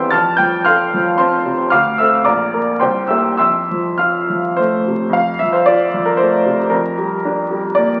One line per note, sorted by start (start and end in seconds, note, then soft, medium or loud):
0.00 0.15 E2 medium
0.00 0.13 E3 soft
0.00 0.15 G3 soft
0.00 0.15 C4 soft
0.00 0.15 G4 medium
0.00 0.15 C5 medium
0.00 0.16 E5 medium
0.00 0.15 F5 medium
0.00 0.15 G5 medium
0.00 0.15 C6 medium
0.00 0.15 E6 medium
0.00 0.12 F6 medium
0.00 0.15 G6 medium
0.11 1.68 F2 medium
0.11 0.37 A5 medium
0.11 0.37 F6 medium
0.11 0.38 A6 loud
0.37 0.82 F3 soft
0.37 0.64 G5 medium
0.37 0.65 G6 medium
0.65 1.09 A4 soft
0.65 1.16 F5 medium
0.65 1.15 C6 medium
0.65 1.19 F6 medium
0.94 1.36 F3 soft
1.18 1.62 C4 soft
1.18 1.68 C5 medium
1.18 1.68 A5 medium
1.18 1.71 C6 medium
1.45 1.72 C3 soft
1.70 2.24 D2 medium
1.70 1.97 F5 medium
1.70 1.97 D6 medium
1.70 1.98 F6 medium
1.98 2.24 C4 soft
1.98 2.24 A4 soft
1.98 2.24 E5 medium
1.98 2.25 E6 medium
2.25 2.80 A#1 medium
2.25 2.77 D5 medium
2.25 2.77 A#5 medium
2.25 2.80 D6 medium
2.54 2.79 A#3 soft
2.54 2.79 A#4 soft
2.80 3.39 C2 medium
2.80 3.08 C5 medium
2.80 3.08 G5 medium
2.80 3.10 C6 medium
3.08 3.37 A#3 soft
3.08 3.38 G4 soft
3.08 3.38 E5 soft
3.08 3.36 E6 medium
3.37 5.08 F2 soft
3.37 3.96 E5 medium
3.37 3.95 C6 medium
3.37 3.99 E6 medium
3.71 4.18 F3 soft
3.98 4.47 F4 soft
3.98 4.82 F5 soft
3.98 4.82 C6 soft
3.98 4.85 F6 medium
4.30 4.75 F3 soft
4.57 5.04 A3 soft
4.57 5.14 C5 medium
4.87 5.15 C3 soft
5.09 6.66 F2 medium
5.09 5.41 F5 medium
5.39 5.84 F3 soft
5.39 5.53 E5 medium
5.53 5.67 C5 medium
5.66 6.10 F4 soft
5.66 6.06 D5 medium
5.94 6.36 F3 soft
6.06 6.20 A#4 medium
6.17 6.62 A3 soft
6.17 6.71 C5 medium
6.46 6.72 C3 soft
6.70 8.00 F2 medium
6.70 7.50 A#4 medium
6.98 7.41 G3 soft
7.25 7.68 D4 medium
7.51 7.93 G3 soft
7.75 8.00 A#3 medium
7.75 8.00 D5 medium